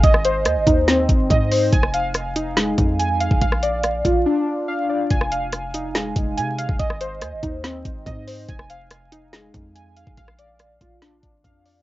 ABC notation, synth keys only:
X:1
M:4/4
L:1/8
Q:1/4=142
K:Fdor
V:1 name="Synth keys"
e c2 E C2 e c | a f2 E A,2 a f | f d2 F D2 f d | a f2 E A,2 a f |
e c2 E C2 e c | a f2 E A,2 a f | f d2 F D2 f d |]